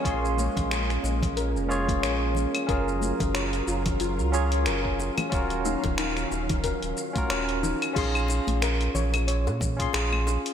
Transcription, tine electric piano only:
X:1
M:4/4
L:1/16
Q:"Swing 16ths" 1/4=91
K:Bbm
V:1 name="Tine electric piano"
[DFAc']8- [DFAc']2 [DFAd] z4 z | [DFAB]8- [DFAB]2 [DFAd] z4 z | [DFGB]8- [DFGB]2 z [DFGB]4- [DFGB] | [DFAc']8- [DFAc']2 z [DFAc']4- [DFAc'] |]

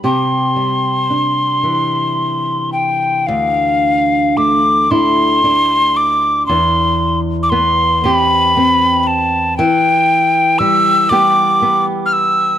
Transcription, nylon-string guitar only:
X:1
M:6/8
L:1/8
Q:3/8=38
K:Ddor
V:1 name="Nylon-string guitar"
[C,G] G, D E,3 | D,,2 A, [A,DE] D2 | E,,2 B, [B,CG] C2 | E,2 G, [G,B,G] B,2 |]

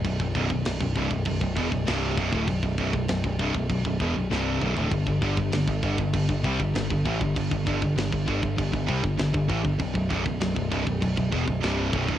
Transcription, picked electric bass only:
X:1
M:4/4
L:1/16
Q:1/4=98
K:Bphr
V:1 name="Picked electric bass" clef=bass
B,,,, B,,,, B,,,, B,,,, B,,,, B,,,, C,,, B,,,, B,,,, B,,,, E,,, B,,,, C,,,2 B,,,, D,,, | B,,,, B,,,, B,,,, B,,,, B,,,, B,,,, C,,, B,,,, B,,,, B,,,, E,,, B,,,, C,,,2 B,,,, D,,, | G,,, G,,, G,,, G,,, G,,, G,,, G,,, G,,, G,,, G,,, C,, G,,, G,,, G,,, A,,, G,,, | G,,, G,,, G,,, G,,, G,,, G,,, G,,, G,,, G,,, G,,, C,, G,,, G,,, G,,, A,,, G,,, |
B,,,, B,,,, B,,,, B,,,, B,,,, B,,,, C,,, B,,,, B,,,, B,,,, E,,, B,,,, C,,,2 B,,,, D,,, |]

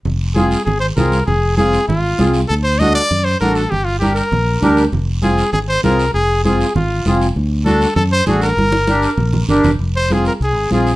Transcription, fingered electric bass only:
X:1
M:4/4
L:1/8
Q:1/4=197
K:Fdor
V:1 name="Fingered electric bass" clef=bass
F,,,4 A,,,2 C,,2 | F,,,4 A,,,2 C,,2 | D,,4 ^F,,2 =A,,,2 | G,,,4 B,,,2 D,,2 |
F,,,4 A,,,2 C,,2 | F,,,4 A,,,2 F,,,2 | D,,4 ^F,,2 =A,,,2 | G,,,4 B,,,2 G,,, F,,, |
F,,,4 C,, A,,, B,,,2 |]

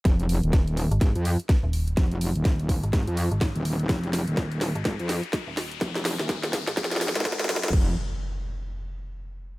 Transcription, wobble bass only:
X:1
M:4/4
L:1/16
Q:"Swing 16ths" 1/4=125
K:Ebdor
V:1 name="Wobble bass" clef=bass
F,,,3 E,,,4 z A,,, F,,2 z4 z | F,,,3 E,,,4 z A,,, F,,2 z2 E,,,3 | F,,,3 E,,,4 z A,,, F,,2 z4 z | F,,,3 E,,,4 z F,,,3 A,,,3 G,,,2 |
F,,,2 z12 z2 |]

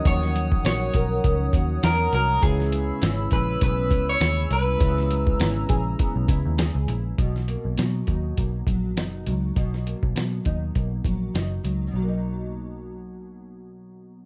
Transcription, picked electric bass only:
X:1
M:4/4
L:1/16
Q:"Swing 16ths" 1/4=101
K:B
V:1 name="Picked electric bass" clef=bass
D,,4 A,,,2 B,,,2 C,,2 D,,2 E,,2 =C,,2 | C,,4 G,,,2 A,,,2 B,,,2 C,,2 D,,2 =C,,2 | C,,4 G,,,2 A,,,2 z B,,, C,, D,,2 C,, A,,,2 | B,,,3 B,,, B,,2 D,,2 B,,,2 A,,,2 F,,,2 C,,2 |
B,,,3 B,,, B,,2 D,,2 B,,,2 A,,,2 F,,,2 C,,2 | B,,,16 |]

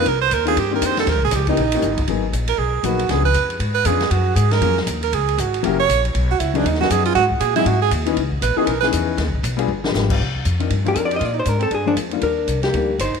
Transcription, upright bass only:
X:1
M:4/4
L:1/8
Q:"Swing" 1/4=236
K:Eb
V:1 name="Upright bass" clef=bass
C,,2 E,,2 G,,2 F,,2 | (3E,, _D,, B,,, D,,2 B,,,2 G,,,2 | [K:G#m] G,,,2 A,,,2 B,,,2 A,,,2 | C,,2 ^E,,2 G,,2 E,,2 |
F,,2 G,,2 ^E,,2 D,,2 | C,,2 G,,,2 F,,,2 A,,,2 | B,,,2 C,,2 D,,2 F,,2 | G,,2 A,,2 G,,2 D,,2 |
C,,2 A,,, z B,,,2 E,,2 | (3D,, C,, B,,, B,,,2 =G,,,2 _A,,,2 | [K:Cm] C,,2 F,,2 G,,2 F,,2 | B,,2 A,,2 G,,2 F,,2 |
E,,2 C,,2 D,,2 G,,, z |]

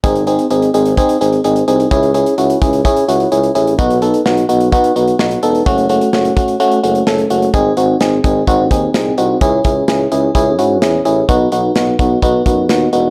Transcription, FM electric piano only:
X:1
M:4/4
L:1/8
Q:1/4=128
K:G#phr
V:1 name="FM electric piano"
[^B,DG] [B,DG] [B,DG] [B,DG] [B,DG] [B,DG] [B,DG] [B,DG] | [CEG] [CEG] [CEF] [CEG] [CEG] [CEF] [CEG] [CEG] | [B,DF] [B,DA] [B,DF] [B,DF] [B,DF] [B,DF] [B,DF] [B,DA] | [A,CF] [A,CF] [A,CF] [A,CF] [A,CF] [A,CF] [A,CA] [A,CF] |
[^B,DG] [B,DF] [B,DG] [B,DG] [B,DF] [B,DG] [B,DG] [B,DF] | [CEG] [CEG] [CEG] [CEG] [CEG] [CEF] [CEG] [CEG] | [B,DF] [B,DF] [B,DF] [B,DF] [B,DF] [B,DF] [B,DF] [B,DF] |]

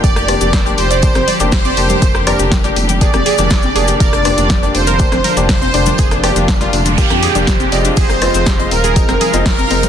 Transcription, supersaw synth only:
X:1
M:4/4
L:1/8
Q:1/4=121
K:Gphr
V:1 name="Supersaw synth"
d3 c3 c2- | c z3 d4 | d3 c3 c2- | c z3 G4 |
c3 B3 B2 |]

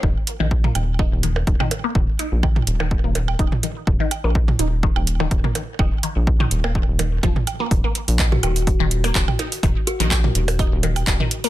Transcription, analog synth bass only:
X:1
M:4/4
L:1/16
Q:"Swing 16ths" 1/4=125
K:Ebm
V:1 name="Analog synth bass" clef=bass
E,,, z2 B,,,3 E,,,3 E,,,3 E,,, z3 | E,,, z2 B,,,3 E,,,3 E,,,3 E,,, z3 | E,,, z2 B,,,3 E,,,3 E,,,3 E,,, z3 | E,,, z2 B,,,3 E,,,3 E,,,3 E,,, z3 |
E,,, z2 B,,,3 E,,,3 E,,,3 E,,, z3 | E,,, z2 B,,,3 E,,,3 E,,,3 E,,, z3 |]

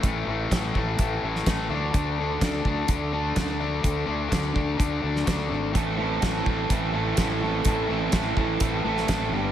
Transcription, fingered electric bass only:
X:1
M:4/4
L:1/8
Q:1/4=126
K:Am
V:1 name="Fingered electric bass" clef=bass
A,,, A,,, A,,, A,,, A,,, A,,, A,,, D,, | D,,2 D,, D,, D,,2 D,,2 | D,, D,, D,, D,, D,, D,, D,, ^G,,, | A,,,2 A,,, A,,, A,,,2 A,,,2 |
A,,, A,,, A,,, A,,, A,,, A,,, A,,, G,,, |]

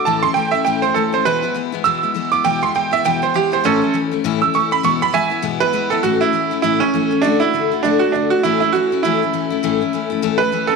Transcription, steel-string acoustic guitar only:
X:1
M:4/4
L:1/8
Q:"Swing" 1/4=201
K:A
V:1 name="Steel-string acoustic guitar"
[A,,E,A,CE] [A,CE] [E,A,CE] [A,CE] [A,,E,A,CE] [A,CE] [E,A,CE] [A,CE] | [E,,B,,E,G,B,E] [E,G,B,E] [E,G,B,E] [E,G,B,E] [E,,B,,E,G,B,E] [E,G,B,E] [E,G,B,E] [E,G,B,E] | [E,,B,,E,G,B,E] [E,G,B,E] [E,G,B,E] [E,G,B,E] [E,,B,,E,G,B,E] [E,G,B,E] [E,G,B,E] [E,G,B,E] | [A,,E,A,CE] [A,CE] [E,A,CE] [A,CE] [A,,E,A,CE] [A,CE] [E,A,CE] [A,CE] |
[E,,B,,E,G,B,E] [E,G,B,E] [E,G,B,E] [E,G,B,E] [E,,B,,E,G,B,E] [E,G,B,E] [E,G,B,E] [E,G,B,E] | [A,,E,A,CE] [A,CE] [E,A,CE] [A,CE] [A,,E,A,CE] [A,CE] [E,A,CE] [A,CE] | [D,A,DF] [A,DF] [D,A,DF] [A,DF] [D,A,DF] D [D,A,DF] [A,DF] | [A,,E,A,CE] [CE] [E,A,CE] [A,CE] [A,,E,A,CE] [A,CE] [E,A,CE] [A,CE] |
[A,,E,A,CE] [A,CE] [E,A,CE] [A,CE] [A,,E,A,CE] [A,E] [E,A,CE] [A,CE] |]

